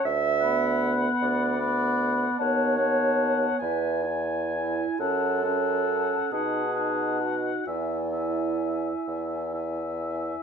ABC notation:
X:1
M:6/8
L:1/8
Q:3/8=45
K:Bdor
V:1 name="Flute"
z b3 b2 | a a2 g g2 | a a2 a a2 | g g3 g2 |]
V:2 name="Oboe"
z f3 f2 | f f2 g g2 | f f2 f f2 | e e3 e2 |]
V:3 name="Clarinet"
e2 z d3 | c3 B z E | A3 G2 F | E4- E z |]
V:4 name="French horn"
z B,3 B,2 | B, B,2 E E2 | C C2 ^D D2 | E E3 E2 |]
V:5 name="Bassoon" clef=bass
D,,3 D,,3 | ^D,,3 E,,3 | F,,3 B,,3 | E,,3 E,,3 |]